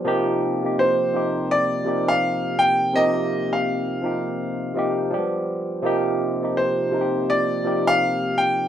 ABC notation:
X:1
M:4/4
L:1/16
Q:"Swing 16ths" 1/4=83
K:Cm
V:1 name="Grand piano"
z4 c4 d3 f3 g2 | e3 f8 z4 z | z4 c4 d3 f3 g2 |]
V:2 name="Tine electric piano"
[C,F,B,EG]2 z [C,F,B,EG]2 z [C,F,B,EG]3 z [C,F,B,EG]4- [C,F,B,EG] z | [C,F,B,EG]4- [C,F,B,EG] z [C,F,B,EG]3 z [C,F,B,EG]2 [F,G,A,=B,DG]3 z | [C,F,B,EG]2 z [C,F,B,EG]2 z [C,F,B,EFG]3 z [C,F,B,EG]4- [C,F,B,EG] z |]